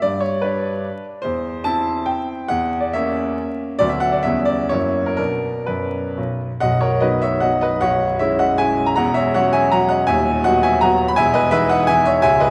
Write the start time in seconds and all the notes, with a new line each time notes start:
0.02 G2 D5
0.20 C#5
0.41 D4 B4
1.22 E2 C5
1.64 C4 E4 A5
2.06 G5
2.48 E2 F#5
2.80 D5
2.93 A#3 C#4 E5
3.79 D2 F#3 B3 D4 D5
3.89 E5
4.00 F#5
4.12 D5
4.23 E2 G3 B3 C#4 E5
4.45 D5
4.69 F#2 F#3 A#3 E4 C#5
5.06 A#4
5.17 B2 B3 D4 A#4
5.66 F#2 B4
6.17 B1
6.60 B0 B1 D#5 F#5
6.81 A#4 C#5
7.00 F#3 B3 D#4 B4 D#5
7.22 C#5 E5
7.40 F#3 B3 D#4 D#5 F#5
7.61 B4 D#5
7.81 B0 B1 C#5 F#5
8.19 G#3 C#4 E4 C#5 E5
8.39 D#5 F#5
8.58 G#3 C#4 E4 E5 G#5
8.86 A#5
8.96 E1 E2 F#5 A#5
9.14 C#5 E5
9.34 F#3 C#4 F#4 C#5 F#5
9.53 E5 G#5
9.72 F#3 C#4 F#4 F#5 A#5
9.89 D#5 F#5
10.07 D#1 D#2 E5 G#5
10.44 F#3 B3 F#4 D#5 F#5
10.63 E5 G#5
10.81 F#3 B3 F#4 F#5 A#5
11.08 B5
11.16 E1 E2 E5 G#5
11.34 B4 D#5
11.51 E3 B3 D#4 B4 E5
11.69 D#5 F#5
11.87 E3 B3 D#4 E5 G#5
12.05 C#5 E5
12.22 C#1 C#2 E5 G#5
12.40 B4 D#5